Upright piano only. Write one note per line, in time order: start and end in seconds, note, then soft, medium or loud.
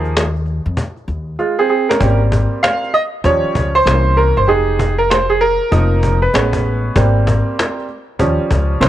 0.00 0.22 F3 medium
0.00 0.22 A#3 medium
0.00 0.23 D#4 medium
0.00 0.23 G#4 medium
1.39 1.58 G#3 soft
1.39 1.58 F4 medium
1.59 1.68 C4 medium
1.59 1.68 G#4 medium
1.69 1.88 C4 medium
1.69 1.88 G#4 medium
1.89 2.19 C#4 medium
1.89 2.19 A#4 medium
2.00 2.89 G3 medium
2.00 2.89 A#3 soft
2.00 2.90 C4 medium
2.63 2.91 F5 medium
2.94 3.01 D#5 medium
3.24 3.68 F3 medium
3.24 3.69 G3 soft
3.24 3.69 C#4 medium
3.24 3.77 C#5 medium
3.75 4.18 C5 loud
3.85 4.45 E3 soft
3.85 4.45 A#3 soft
3.85 4.45 C#4 medium
4.17 4.35 A#4 medium
4.37 4.47 C5 medium
4.47 4.92 G#3 soft
4.47 4.93 D#4 medium
4.47 4.92 G4 medium
4.47 4.95 G#4 medium
4.98 5.10 A#4 medium
5.10 5.30 C5 medium
5.30 5.41 G#4 medium
5.41 6.18 A#4 medium
5.71 6.16 F3 medium
5.71 6.16 A#3 soft
5.71 6.16 D#4 medium
6.22 7.11 B4 medium
6.33 6.92 G#3 medium
6.33 6.92 B3 soft
6.33 6.93 C#4 medium
6.96 7.84 G3 medium
6.96 7.85 A#3 medium
6.96 7.85 C4 medium
8.19 8.78 F3 medium
8.19 8.78 G3 medium
8.19 8.78 C#4 medium
8.80 8.89 E3 medium
8.80 8.89 A#3 medium
8.80 8.89 C#4 medium
8.80 8.86 C5 medium